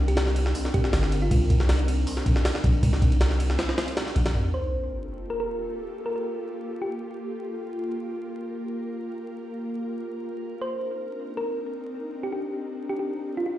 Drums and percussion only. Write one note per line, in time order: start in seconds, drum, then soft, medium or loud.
0.08 ride soft
0.17 snare loud
0.17 ride medium
0.27 snare soft
0.36 ride medium
0.46 snare soft
0.55 open hi-hat medium
0.65 snare soft
0.74 kick medium
0.74 ride medium
0.84 snare soft
0.93 snare loud
0.93 ride medium
1.03 snare soft
1.12 ride medium
1.31 kick loud
1.31 ride medium
1.50 kick medium
1.50 ride medium
1.60 snare medium
1.69 snare loud
1.69 ride medium
1.79 ride soft
1.88 ride medium
2.07 open hi-hat medium
2.17 snare soft
2.26 kick loud
2.26 ride medium
2.36 snare medium
2.45 snare loud
2.45 ride medium
2.55 snare medium
2.64 kick loud
2.64 ride medium
2.83 kick loud
2.83 ride medium
2.93 snare soft
3.02 kick loud
3.02 ride medium
3.12 ride soft
3.21 snare loud
3.21 ride medium
3.31 snare soft
3.40 ride medium
3.50 snare soft
3.59 snare loud
3.59 ride medium
3.69 snare medium
3.78 snare loud
3.78 ride medium
3.88 ride medium
3.97 snare loud
3.97 ride medium
4.07 snare soft
4.16 ride medium
4.26 snare loud
4.26 ride medium